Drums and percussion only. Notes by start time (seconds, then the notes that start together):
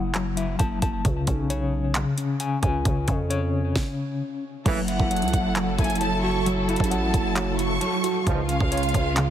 0.14 clap, closed hi-hat
0.37 closed hi-hat
0.59 kick, closed hi-hat
0.82 kick, closed hi-hat
1.05 kick, closed hi-hat
1.27 kick, closed hi-hat
1.50 closed hi-hat
1.95 clap, closed hi-hat
2.18 closed hi-hat
2.40 closed hi-hat
2.63 kick, closed hi-hat
2.85 kick, closed hi-hat
3.08 kick, closed hi-hat
3.31 closed hi-hat
3.76 kick, snare
4.66 kick, closed hi-hat, crash
4.88 closed hi-hat
5.00 kick
5.11 closed hi-hat
5.17 closed hi-hat
5.22 closed hi-hat
5.28 closed hi-hat
5.33 kick, closed hi-hat
5.55 clap, closed hi-hat
5.79 kick, closed hi-hat
5.84 closed hi-hat
5.90 closed hi-hat
5.95 closed hi-hat
6.01 closed hi-hat
6.46 closed hi-hat
6.69 closed hi-hat
6.76 kick, closed hi-hat
6.84 closed hi-hat
6.91 closed hi-hat
7.14 kick, closed hi-hat
7.36 clap, closed hi-hat
7.59 closed hi-hat
7.81 closed hi-hat
8.04 closed hi-hat
8.27 kick, closed hi-hat
8.49 closed hi-hat
8.61 kick
8.72 closed hi-hat
8.77 closed hi-hat
8.83 closed hi-hat
8.89 closed hi-hat
8.94 kick, closed hi-hat
9.16 clap, closed hi-hat